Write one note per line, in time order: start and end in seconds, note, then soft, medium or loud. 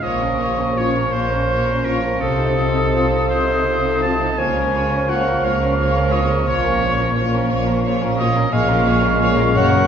0.00 1.01 A#1 soft
0.00 1.01 A#2 soft
0.00 2.24 A#2 soft
0.00 4.35 F3 soft
0.00 0.20 A#3 soft
0.00 0.76 C#4 soft
0.00 1.12 F4 soft
0.00 0.20 F4 soft
0.00 2.17 A#4 soft
0.00 0.21 C#5 soft
0.00 0.79 D#5 medium
0.00 2.18 C#6 soft
0.21 0.40 C#4 soft
0.21 0.41 A#4 soft
0.40 1.84 A#3 soft
0.40 0.59 A#3 soft
0.40 0.59 F4 soft
0.40 0.59 C#5 soft
0.59 0.78 C#4 soft
0.59 0.79 C#4 soft
0.59 0.78 A#4 soft
0.77 0.95 A#3 soft
0.77 1.48 C#4 soft
0.77 0.90 C#4 soft
0.77 0.90 F4 soft
0.77 0.95 F4 soft
0.77 0.94 C#5 soft
0.77 1.14 C#5 medium
0.95 1.14 C#4 soft
0.95 1.15 C#4 soft
0.95 1.14 A#4 soft
1.12 2.08 A#1 soft
1.12 2.08 A#2 soft
1.12 1.32 A#3 soft
1.12 2.91 F4 soft
1.12 1.32 F4 soft
1.12 1.86 C5 medium
1.12 1.31 C#5 soft
1.31 1.50 C#4 soft
1.31 1.49 A#4 soft
1.49 1.67 A#3 soft
1.49 2.24 C#4 soft
1.49 1.66 F4 soft
1.49 1.66 C#5 soft
1.66 1.86 C#4 soft
1.66 1.85 A#4 soft
1.84 2.24 A#3 soft
1.84 2.04 A#3 soft
1.84 1.97 C#4 soft
1.84 1.97 F4 soft
1.84 2.04 F4 soft
1.84 2.22 A#4 medium
1.84 2.03 C#5 soft
2.03 2.21 C#4 soft
2.03 2.22 C#4 soft
2.03 2.21 A#4 soft
2.19 3.17 C2 soft
2.19 3.16 C3 soft
2.19 4.41 C3 soft
2.19 2.38 C4 soft
2.19 2.38 F4 soft
2.19 3.28 A4 medium
2.19 4.35 A4 soft
2.19 2.38 C5 soft
2.19 4.34 D#6 soft
2.39 2.57 D#4 soft
2.39 2.58 A4 soft
2.57 2.75 C4 soft
2.57 3.28 D#4 soft
2.57 2.76 F4 soft
2.57 2.76 C5 soft
2.74 2.93 D#4 soft
2.74 2.93 A4 soft
2.93 3.06 C4 soft
2.93 3.11 C4 soft
2.93 3.65 F4 soft
2.93 3.06 F4 soft
2.93 3.10 F4 soft
2.93 3.11 C5 soft
3.11 3.30 D#4 soft
3.11 3.31 A4 soft
3.27 4.26 C2 soft
3.27 4.26 C3 medium
3.27 3.48 C4 soft
3.27 4.01 D#4 soft
3.27 3.47 F4 soft
3.27 4.01 C5 medium
3.32 3.49 C5 soft
3.46 3.65 D#4 soft
3.46 3.66 D#4 soft
3.51 3.68 A4 soft
3.63 3.83 C4 soft
3.63 3.82 F4 soft
3.63 5.07 F4 soft
3.68 3.84 C5 soft
3.84 4.03 D#4 soft
3.84 4.03 A4 soft
4.02 4.21 C4 soft
4.02 4.17 C4 soft
4.02 4.41 D#4 soft
4.02 4.21 F4 soft
4.02 4.16 F4 soft
4.02 4.22 C5 soft
4.02 4.40 A5 medium
4.21 4.39 D#4 soft
4.21 4.39 A4 soft
4.38 5.32 C#2 soft
4.38 5.31 C#3 medium
4.38 6.49 C#3 soft
4.38 8.22 F3 soft
4.38 4.56 A#3 soft
4.38 4.55 F4 soft
4.38 8.22 A#4 medium
4.38 4.56 C#5 soft
4.38 5.11 G#5 medium
4.38 8.22 C#6 soft
4.57 4.74 C#4 soft
4.57 4.75 A#4 soft
4.74 4.92 A#3 soft
4.74 6.11 C#4 soft
4.74 4.92 F4 soft
4.74 4.92 C#5 soft
4.91 5.09 C#4 soft
4.91 5.10 C#4 soft
4.91 5.09 A#4 soft
5.08 5.22 A#3 soft
5.08 5.26 A#3 soft
5.08 5.77 F4 soft
5.08 5.25 F4 soft
5.08 5.22 F4 soft
5.08 5.26 C#5 soft
5.08 5.46 F#5 medium
5.27 5.44 C#4 soft
5.27 5.45 C#4 soft
5.27 5.45 A#4 soft
5.43 6.34 C#2 medium
5.43 6.34 C#3 medium
5.43 5.62 A#3 soft
5.43 5.62 F4 soft
5.43 7.49 A#4 soft
5.43 5.63 C#5 soft
5.43 6.13 F5 medium
5.63 5.79 C#4 soft
5.63 5.79 A#4 soft
5.78 5.95 A#3 soft
5.78 7.15 F4 soft
5.78 5.95 F4 soft
5.78 5.95 C#5 soft
5.96 6.12 C#4 soft
5.96 6.13 C#4 soft
5.96 6.13 A#4 soft
6.12 6.29 A#3 soft
6.12 6.25 A#3 medium
6.12 6.81 C#4 soft
6.12 6.24 F4 soft
6.12 6.30 F4 soft
6.12 6.29 C#5 soft
6.12 6.47 D#5 medium
6.28 6.46 C#4 soft
6.28 6.47 C#4 soft
6.28 6.47 A#4 soft
6.45 7.39 A#1 medium
6.45 8.51 A#2 medium
6.45 7.39 A#2 medium
6.45 6.62 A#3 soft
6.45 6.63 F4 medium
6.45 6.63 C#5 medium
6.45 7.49 C#5 medium
6.64 6.82 C#4 soft
6.64 6.82 C#4 medium
6.64 6.82 A#4 soft
6.81 6.99 A#3 soft
6.81 8.17 C#4 medium
6.81 7.00 F4 soft
6.81 7.00 C#5 soft
7.00 7.17 C#4 soft
7.00 7.17 A#4 soft
7.16 7.32 A#3 soft
7.16 7.83 F4 soft
7.16 7.33 F4 soft
7.16 7.33 C#5 soft
7.20 7.31 A#3 soft
7.20 7.31 F4 medium
7.33 7.50 C#4 soft
7.33 7.51 C#4 soft
7.33 7.51 A#4 soft
7.50 8.41 A#1 medium
7.50 8.41 A#2 medium
7.50 7.68 A#3 soft
7.50 7.67 F4 medium
7.50 9.21 A#4 medium
7.50 7.68 C#5 medium
7.67 7.84 C#4 soft
7.67 7.85 A#4 soft
7.84 8.01 A#3 soft
7.84 8.00 F4 soft
7.84 9.58 F4 soft
7.84 8.01 C#5 soft
8.01 8.18 C#4 soft
8.01 8.19 C#4 soft
8.01 8.19 A#4 medium
8.18 8.36 A#3 medium
8.18 8.32 A#3 medium
8.18 8.85 C#4 soft
8.18 8.36 F4 soft
8.18 8.32 F4 medium
8.18 8.36 C#5 medium
8.18 8.54 D#5 medium
8.35 8.52 C#4 medium
8.35 8.53 C#4 soft
8.35 8.53 A#4 soft
8.50 9.43 A#1 medium
8.50 9.58 A#2 medium
8.50 9.43 A#2 medium
8.50 9.52 G#3 medium
8.50 8.68 A#3 medium
8.50 8.67 G#4 medium
8.50 9.87 A#4 medium
8.50 8.68 C#5 medium
8.50 9.21 F5 medium
8.50 9.87 C#6 medium
8.56 9.53 G#3 medium
8.56 9.87 C#4 medium
8.68 8.87 C#4 medium
8.68 8.86 F4 medium
8.68 8.86 A#4 medium
8.85 9.04 A#3 medium
8.85 9.87 C#4 medium
8.85 9.04 G#4 medium
8.85 9.03 C#5 medium
9.02 9.21 C#4 medium
9.02 9.21 F4 soft
9.02 9.20 A#4 soft
9.20 9.38 A#3 soft
9.20 9.36 G#4 medium
9.20 9.58 G#4 soft
9.20 9.87 A#4 medium
9.20 9.37 C#5 medium
9.20 9.59 F5 medium
9.37 9.55 C#4 medium
9.37 9.55 F4 soft
9.37 9.55 A#4 soft
9.54 9.87 F#1 medium
9.54 9.87 F#2 medium
9.54 9.87 F#3 medium
9.54 9.72 A#3 medium
9.54 9.87 A#3 medium
9.54 9.71 F#4 medium
9.54 9.71 C#5 medium
9.54 9.87 F#5 medium
9.71 9.87 C#4 medium
9.71 9.87 A#4 soft
9.71 9.87 A#4 medium